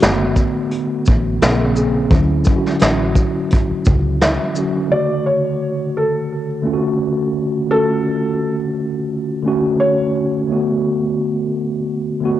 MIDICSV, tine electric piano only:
0, 0, Header, 1, 2, 480
1, 0, Start_track
1, 0, Key_signature, 2, "major"
1, 0, Tempo, 697674
1, 1450, Time_signature, 4, 2, 24, 8
1, 8531, End_track
2, 0, Start_track
2, 0, Title_t, "Tine electric piano"
2, 0, Program_c, 0, 4
2, 0, Control_c, 0, 64, 127
2, 0, Note_on_c, 0, 50, 100
2, 0, Note_on_c, 0, 57, 81
2, 0, Note_on_c, 0, 59, 80
2, 0, Note_on_c, 0, 66, 98
2, 404, Note_off_c, 0, 50, 0
2, 410, Note_off_c, 0, 57, 0
2, 415, Note_off_c, 0, 59, 0
2, 421, Note_off_c, 0, 66, 0
2, 961, Note_on_c, 0, 49, 84
2, 972, Note_on_c, 0, 58, 82
2, 979, Control_c, 0, 64, 0
2, 984, Note_on_c, 0, 60, 83
2, 996, Note_on_c, 0, 68, 95
2, 1114, Control_c, 0, 64, 127
2, 1163, Note_off_c, 0, 49, 0
2, 1169, Note_off_c, 0, 58, 0
2, 1175, Note_off_c, 0, 60, 0
2, 1181, Note_off_c, 0, 68, 0
2, 1182, Note_on_c, 0, 49, 83
2, 1193, Note_on_c, 0, 58, 68
2, 1204, Note_on_c, 0, 60, 70
2, 1216, Note_on_c, 0, 68, 85
2, 1364, Note_off_c, 0, 49, 0
2, 1369, Note_off_c, 0, 58, 0
2, 1375, Note_off_c, 0, 60, 0
2, 1381, Note_off_c, 0, 68, 0
2, 1441, Note_on_c, 0, 50, 85
2, 1453, Note_on_c, 0, 54, 77
2, 1460, Control_c, 0, 64, 0
2, 1465, Note_on_c, 0, 61, 78
2, 1477, Note_on_c, 0, 64, 82
2, 1589, Control_c, 0, 64, 127
2, 1613, Note_off_c, 0, 50, 0
2, 1619, Note_off_c, 0, 54, 0
2, 1625, Note_off_c, 0, 61, 0
2, 1631, Note_off_c, 0, 64, 0
2, 1684, Note_on_c, 0, 50, 94
2, 1695, Note_on_c, 0, 54, 71
2, 1707, Note_on_c, 0, 61, 74
2, 1718, Note_on_c, 0, 64, 76
2, 1754, Note_off_c, 0, 64, 0
2, 1762, Note_on_c, 0, 66, 96
2, 2328, Note_off_c, 0, 50, 0
2, 2333, Note_off_c, 0, 54, 0
2, 2339, Note_off_c, 0, 61, 0
2, 2367, Note_off_c, 0, 66, 0
2, 3121, Note_on_c, 0, 50, 83
2, 3130, Note_on_c, 0, 54, 71
2, 3142, Note_on_c, 0, 61, 70
2, 3155, Note_on_c, 0, 66, 82
2, 3293, Note_off_c, 0, 50, 0
2, 3298, Note_off_c, 0, 54, 0
2, 3304, Note_off_c, 0, 61, 0
2, 3310, Note_off_c, 0, 66, 0
2, 3351, Note_on_c, 0, 50, 68
2, 3362, Note_on_c, 0, 57, 68
2, 3373, Note_on_c, 0, 49, 60
2, 3380, Control_c, 0, 64, 0
2, 3386, Note_on_c, 0, 66, 86
2, 3518, Control_c, 0, 64, 127
2, 4001, Note_off_c, 0, 50, 0
2, 4007, Note_off_c, 0, 57, 0
2, 4013, Note_off_c, 0, 49, 0
2, 4019, Note_off_c, 0, 66, 0
2, 4554, Note_on_c, 0, 50, 97
2, 4564, Note_on_c, 0, 57, 89
2, 4577, Note_on_c, 0, 61, 84
2, 4589, Note_on_c, 0, 65, 75
2, 4630, Note_off_c, 0, 65, 0
2, 4633, Note_on_c, 0, 66, 102
2, 5035, Note_off_c, 0, 50, 0
2, 5040, Note_off_c, 0, 57, 0
2, 5047, Note_off_c, 0, 61, 0
2, 5075, Note_off_c, 0, 66, 0
2, 5276, Note_on_c, 0, 50, 67
2, 5288, Note_on_c, 0, 57, 65
2, 5298, Note_on_c, 0, 61, 59
2, 5310, Note_on_c, 0, 66, 73
2, 5924, Note_off_c, 0, 50, 0
2, 5930, Note_off_c, 0, 57, 0
2, 5935, Note_off_c, 0, 61, 0
2, 5941, Note_off_c, 0, 66, 0
2, 6485, Note_on_c, 0, 50, 101
2, 6496, Note_on_c, 0, 57, 82
2, 6509, Note_on_c, 0, 61, 86
2, 6520, Note_on_c, 0, 66, 113
2, 6961, Note_off_c, 0, 50, 0
2, 6966, Note_off_c, 0, 57, 0
2, 6973, Note_off_c, 0, 61, 0
2, 6978, Note_off_c, 0, 66, 0
2, 7204, Note_on_c, 0, 50, 82
2, 7215, Note_on_c, 0, 57, 79
2, 7219, Control_c, 0, 64, 0
2, 7226, Note_on_c, 0, 59, 81
2, 7239, Note_on_c, 0, 66, 97
2, 7347, Control_c, 0, 64, 127
2, 7848, Note_off_c, 0, 50, 0
2, 7854, Note_off_c, 0, 57, 0
2, 7859, Note_off_c, 0, 59, 0
2, 7866, Note_off_c, 0, 66, 0
2, 8394, Note_on_c, 0, 50, 97
2, 8405, Note_on_c, 0, 57, 78
2, 8419, Note_on_c, 0, 59, 83
2, 8429, Note_on_c, 0, 66, 107
2, 8531, Note_off_c, 0, 50, 0
2, 8531, Note_off_c, 0, 57, 0
2, 8531, Note_off_c, 0, 59, 0
2, 8531, Note_off_c, 0, 66, 0
2, 8531, End_track
0, 0, End_of_file